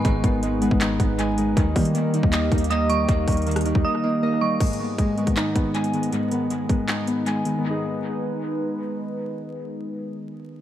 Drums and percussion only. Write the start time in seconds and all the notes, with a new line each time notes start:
0.05 kick, closed hi-hat
0.24 kick, closed hi-hat
0.43 closed hi-hat
0.62 closed hi-hat
0.71 kick
0.81 clap, closed hi-hat
1.00 kick, closed hi-hat
1.19 closed hi-hat
1.38 closed hi-hat
1.57 kick, closed hi-hat
1.76 kick, closed hi-hat, open hi-hat
1.85 closed hi-hat
1.95 closed hi-hat
2.14 closed hi-hat
2.23 kick
2.33 clap, closed hi-hat
2.52 kick, closed hi-hat
2.58 closed hi-hat
2.64 closed hi-hat
2.71 closed hi-hat
2.90 closed hi-hat
3.09 kick, closed hi-hat
3.28 kick, closed hi-hat, open hi-hat
3.32 closed hi-hat
3.37 closed hi-hat
3.42 closed hi-hat
3.47 closed hi-hat
3.51 closed hi-hat
3.56 cross-stick, closed hi-hat
3.61 closed hi-hat
3.66 closed hi-hat
3.75 kick
4.61 kick, closed hi-hat, crash
4.67 closed hi-hat
4.73 closed hi-hat
4.98 kick, closed hi-hat
5.18 closed hi-hat
5.27 kick, closed hi-hat
5.37 clap, closed hi-hat
5.55 kick, closed hi-hat
5.75 closed hi-hat
5.84 closed hi-hat
5.94 closed hi-hat
6.03 closed hi-hat
6.13 closed hi-hat
6.32 closed hi-hat
6.50 closed hi-hat
6.69 kick, closed hi-hat
6.88 clap, closed hi-hat
7.07 closed hi-hat
7.26 closed hi-hat
7.45 closed hi-hat